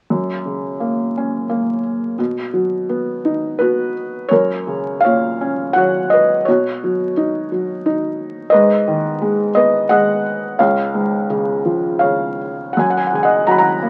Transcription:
0.10 2.15 F#2 soft
0.45 1.80 C#3 soft
0.80 1.48 A#3 soft
1.17 2.16 C#4 soft
1.50 2.16 A#3 soft
2.18 4.27 B2 soft
2.53 3.91 F#3 soft
2.89 3.59 B3 soft
3.25 4.28 D#4 soft
3.59 4.29 B3 soft
3.59 4.28 F#4 soft
3.59 4.33 B4 medium
4.29 6.43 F#2 soft
4.29 5.01 A#4 soft
4.29 5.03 C#5 medium
4.67 6.08 C#3 soft
5.01 5.71 F5 medium
5.05 6.44 A#2 soft
5.05 5.73 C#5 medium
5.41 6.44 C#4 soft
5.73 6.44 F#3 soft
5.73 6.11 F#5 medium
5.78 6.10 C#5 medium
6.10 6.45 B4 medium
6.10 6.47 D#5 medium
6.45 8.48 B2 medium
6.45 7.12 F#4 soft
6.45 7.10 C#5 medium
6.84 7.50 F#3 soft
7.17 7.84 D#4 soft
7.52 8.50 F#3 soft
7.86 8.51 D#4 soft
8.50 9.50 B4 medium
8.50 9.49 D#5 medium
8.54 10.56 G#2 medium
8.88 10.20 D#3 soft
9.22 9.89 G#3 soft
9.55 10.56 B3 soft
9.55 9.88 B4 medium
9.55 9.87 D#5 medium
9.89 10.57 G#3 medium
9.89 10.55 D#5 medium
9.89 10.61 F#5 medium
10.59 12.72 C#2 medium
10.59 11.25 C#5 medium
10.59 11.25 F5 medium
10.94 12.35 G#2 soft
11.30 12.02 C#3 soft
11.65 12.73 F3 soft
11.99 12.71 C#5 soft
11.99 12.77 F5 medium
12.04 12.75 C#3 soft
12.73 12.82 F#5 medium
12.77 13.90 F#2 medium
12.77 12.90 G#5 medium
12.90 12.99 F#5 medium
12.97 13.07 G#5 soft
13.07 13.16 F#5 soft
13.13 13.90 C#3 soft
13.13 13.24 G#5 soft
13.23 13.46 D#5 soft
13.23 13.45 F#5 medium
13.47 13.90 F#3 soft
13.47 13.55 F#5 medium
13.47 13.54 A#5 medium
13.51 13.60 B5 medium
13.58 13.90 F#5 medium
13.58 13.90 A#5 medium
13.83 13.90 A#3 soft

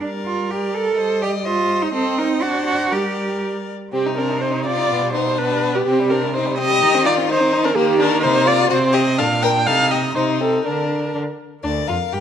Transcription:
0.01 0.94 G3 medium
0.01 0.09 D4 medium
0.01 1.00 A#4 medium
0.01 0.46 D5 soft
0.26 0.51 F4 medium
0.50 0.76 G4 medium
0.50 0.96 D5 medium
0.74 1.22 A4 medium
0.97 1.91 G3 medium
0.97 1.24 C5 medium
0.97 1.47 D#5 medium
1.22 1.30 G4 medium
1.22 1.46 D5 medium
1.45 1.83 F4 medium
1.45 1.92 C5 medium
1.45 1.93 D#5 medium
1.82 1.94 D#4 loud
1.92 2.44 C4 medium
1.92 2.20 C4 medium
1.92 2.16 A4 medium
1.92 2.42 D#5 medium
2.18 2.43 D#4 loud
2.18 2.26 A#4 medium
2.41 2.93 D4 medium
2.41 2.66 F#4 medium
2.41 2.92 C5 medium
2.41 2.91 D5 medium
2.66 2.94 F#4 medium
2.91 3.72 G3 medium
2.91 3.42 G4 medium
2.91 3.71 A#4 medium
2.91 3.70 D5 medium
3.92 4.92 C3 medium
3.92 4.15 C4 medium
3.92 4.07 C4 medium
3.92 4.15 G4 medium
4.06 4.20 D#4 medium
4.17 4.30 C4 medium
4.17 4.44 D4 medium
4.17 4.43 A#4 medium
4.29 4.40 D#4 medium
4.40 4.53 C4 medium
4.40 4.66 D#4 medium
4.40 4.65 C5 medium
4.52 4.68 D#4 medium
4.65 4.79 C4 medium
4.65 5.13 F4 medium
4.65 5.13 D5 medium
4.78 4.89 D#4 medium
4.90 5.86 B2 medium
4.90 5.03 B3 medium
5.02 5.17 G3 medium
5.13 5.28 B3 medium
5.13 5.40 D#4 medium
5.13 5.40 C5 medium
5.26 5.38 G3 medium
5.38 5.53 B3 medium
5.38 5.76 D4 medium
5.38 5.77 B4 medium
5.51 5.64 G3 medium
5.62 5.76 B3 medium
5.74 5.86 G3 medium
5.74 5.89 B3 medium
5.74 5.86 G4 medium
5.87 6.84 C3 medium
5.87 6.13 C4 medium
5.87 6.01 C4 medium
5.87 6.12 G4 medium
5.99 6.12 G3 medium
6.10 6.25 C4 medium
6.10 6.35 D4 medium
6.10 6.36 A#4 medium
6.23 6.33 G3 medium
6.34 6.47 C4 medium
6.34 6.58 D#4 medium
6.34 6.58 C5 medium
6.46 6.60 G3 medium
6.58 6.72 C4 medium
6.58 7.07 G4 loud
6.58 7.05 D#5 loud
6.71 6.81 G3 medium
6.82 7.77 D#3 medium
6.82 6.96 D#4 medium
6.94 7.07 C4 medium
7.05 7.19 D#4 medium
7.05 7.31 F4 loud
7.05 7.14 D5 loud
7.17 7.29 C4 medium
7.29 7.42 D#4 medium
7.29 7.65 D#4 loud
7.29 7.66 C5 loud
7.41 7.54 C4 medium
7.53 7.66 D#4 medium
7.64 7.75 C4 medium
7.64 7.75 D4 loud
7.64 7.77 A#4 loud
7.75 8.26 D#3 medium
7.75 8.67 A#3 medium
7.75 7.99 A#3 medium
7.75 8.02 G4 loud
8.00 8.22 D4 loud
8.00 8.25 A#4 loud
8.22 8.71 C3 medium
8.22 8.47 D#4 loud
8.22 8.49 C5 loud
8.46 8.69 F4 loud
8.46 8.70 D5 loud
8.70 9.21 C3 medium
8.70 9.19 C4 medium
8.70 8.78 F#4 medium
8.70 8.96 C5 loud
8.93 9.01 G4 loud
8.93 9.20 D#5 loud
9.18 9.69 A#2 medium
9.18 9.68 D4 medium
9.18 9.27 A4 medium
9.18 9.44 F5 loud
9.43 9.51 A#4 loud
9.43 9.68 G5 loud
9.67 10.16 C3 medium
9.67 10.14 D#4 medium
9.67 9.90 A4 medium
9.67 9.92 F5 loud
9.91 9.99 G4 medium
9.91 10.15 D#5 loud
10.14 10.64 C3 medium
10.14 10.42 D#4 medium
10.14 10.67 D#4 medium
10.14 10.24 C5 medium
10.41 10.65 C4 medium
10.41 10.65 A4 medium
10.65 11.14 D3 medium
10.65 11.13 D4 medium
10.65 11.14 D4 medium
10.65 11.14 A#4 medium
11.14 11.23 D3 medium
11.14 11.22 D4 soft
11.63 11.87 D2 medium
11.63 11.71 D4 medium
11.63 12.20 A#4 medium
11.63 11.89 D5 medium
11.88 11.97 F2 medium
11.88 11.96 F4 medium
11.88 12.14 F5 medium
12.12 12.20 G2 medium
12.12 12.20 G4 medium
12.12 12.20 G5 medium

